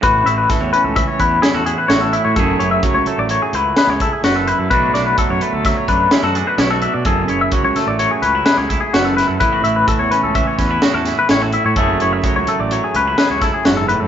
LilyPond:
<<
  \new Staff \with { instrumentName = "Clean electric guitar" } { \time 5/4 \key a \major \tempo 4 = 128 b'8 e''16 b'16 a'16 cis''16 b'16 a'16 e''16 cis''16 b'8 gis'16 a'16 gis'16 b'16 cis''16 a'16 e''16 cis''16 | a'8 cis''16 e''16 cis''16 cis''16 a'16 d''16 cis''16 gis'16 b'8 b'16 cis''16 a'16 gis'16 fis'16 a'16 b'16 a'16 | b'8 d''16 b'16 a'16 cis''16 b'16 a'16 e''16 cis''16 b'8 gis'16 a'16 gis'16 b'16 cis''16 a'16 e''16 d''16 | a'8 cis''16 e''16 cis''16 cis''16 a'16 d''16 cis''16 gis'16 b'8 b'16 cis''16 a'16 gis'16 fis'16 a'16 b'16 a'16 |
b'8 e''16 b'16 a'16 cis''16 b'16 a'16 e''16 cis''16 b'8 gis'16 a'16 gis'16 b'16 cis''16 a'16 e''16 cis''16 | a'8 cis''16 e''16 cis''16 cis''16 a'16 d''16 cis''16 gis'16 b'8 b'16 cis''16 a'16 gis'16 fis'16 a'16 b'16 a'16 | }
  \new Staff \with { instrumentName = "Clean electric guitar" } { \time 5/4 \key a \major << { fis'8 e'4 cis'4 e'8 e'16 fis'16 e'8 fis'8 e'8 | <fis a e' gis'>8 e'4 a4 e'8 gis'8 e'8 b'8 e'8 | <fis a d' fis'>8 d'4 a4 d'8 e'16 fis'16 d'8 e'16 fis'16 d'8 | gis'8 e'4 a4 cis'16 e'16 gis'8 e'8 b'8 e'8 |
e'16 fis'16 e'4 cis'4 cis'16 e'16 fis'8 e'8 e'16 fis'16 e'8 | <fis a e' gis'>8 e'4 a4 cis'16 e'16 gis'8 e'4. | } \\ { a,4 e4 e2 a,4 | fis,4 fis4 fis2 fis,4 | b,4 fis4 fis2 b,4 | fis,4 fis4 fis2 fis,4 |
a,4 e4 e2 a,4 | fis,4 fis4 fis2 gis,8 a,8 | } >> }
  \new Staff \with { instrumentName = "Fingered electric bass" } { \clef bass \time 5/4 \key a \major a,,8 a,,8 r16 e,16 r16 cis,8 r16 e,8 r16 e,8 r16 a,,8. a,16 | fis,,8 fis,,8 r16 cis,16 r16 a,,8 r16 cis,8 r16 cis,8 r16 fis,,8. fis,16 | b,,8 b,,8 r16 fis,16 r16 d,8 r16 fis,8 r16 fis,8 r16 b,,8. b,16 | fis,,8 fis,,8 r16 cis,16 r16 a,,8 r16 cis,8 r16 cis,8 r16 fis,,8. fis,16 |
a,,8 a,,8 r16 e,16 r16 cis,8 r16 e,8 r16 e,8 r16 a,,8. a,16 | fis,,8 fis,,8 r16 cis,16 r16 a,,8 r16 cis,8 r16 cis,8 r16 fis,,8. fis,16 | }
  \new DrumStaff \with { instrumentName = "Drums" } \drummode { \time 5/4 <hh bd>8 hh8 <hh bd sn>8 hh8 <hh bd>8 <hh bd>8 <hh sn>8 hh8 <hh sn>8 hh8 | <hh bd>8 hh8 <hh bd>8 hh8 hh8 hh8 <hh sn>8 <hh bd>8 <hh sn>8 hh8 | <hh bd>8 <hh sn>8 <hh bd>8 hh8 <hh bd sn>8 <hh bd>8 <hh sn>8 hh8 <hh sn>8 hh8 | <hh bd>8 hh8 <hh bd>8 <hh sn>8 hh8 hh8 <hh sn>8 <hh bd>8 <hh sn>8 <hh sn>8 |
<hh bd>8 hh8 <hh bd>8 hh8 <hh bd>8 <hh bd sn>8 <hh sn>8 <hh sn>8 <hh sn>8 hh8 | <hh bd>8 hh8 <hh bd>8 hh8 hh8 hh8 <hh sn>8 <hh bd sn>8 <hh sn>8 hh8 | }
>>